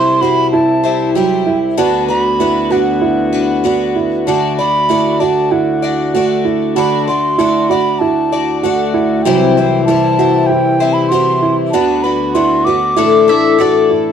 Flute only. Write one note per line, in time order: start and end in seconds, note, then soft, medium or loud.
0.00 0.23 C6 loud
0.21 0.51 B5 loud
0.52 1.11 A5 medium
1.15 1.59 G5 medium
1.79 2.07 A5 loud
2.09 2.73 B5 loud
2.72 3.96 F#5 medium
4.27 4.56 A5 loud
4.58 5.13 B5 loud
5.13 5.22 B5 medium
5.20 5.53 A5 medium
5.51 6.45 F#5 medium
6.76 7.05 B5 medium
7.07 7.71 C6 medium
7.69 8.00 B5 medium
7.99 8.61 A5 medium
8.62 9.24 F#5 medium
9.22 9.84 G5 medium
9.85 10.48 A5 loud
10.46 10.95 G5 loud
10.93 11.10 B5 medium
11.09 11.57 C6 medium
11.71 12.04 A5 loud
12.03 12.36 B5 medium
12.34 12.66 C6 loud
12.64 13.90 D6 medium